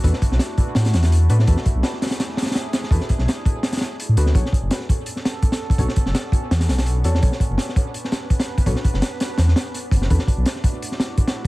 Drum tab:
HH |x---x---x---x---x-x-x-x-x---x---|x---x---x---xxx-x---xxxxx---x---|x---x---x---x---x-xxx---x---x---|x---x---x---x---x---x---x-x---x-|
SD |--o---o-o-------o-o-o-o-------o-|--o-----o-o-ooo-o-o-ooooo---o-o-|--o---o-o-------o-ooo---------o-|--o-----o-o-------o-o-----o-----|
BD |o---o-------o-------------------|o---o---------------------------|o---o-------o-------------------|o---o-------o-----------o-----o-|

HH |x---x---x---x---x-x-x-x-x---x---|x---x---x---x---x---x---x-x---x-|x---x---x---x---x---x---x---x---|x---x---x---x---x---x---x-x-----|
SD |--o---o-o-------o-o-o-o-------o-|--o-----o-o-------o-o-----o-----|--o---o-o---o---o-o-o---------o-|--o-----o-o-------o-o-----o-----|
BD |o---o-------o-------------------|o---o-------o-----------o-----o-|o---o-----------------------o---|o---o-------o-----------o-------|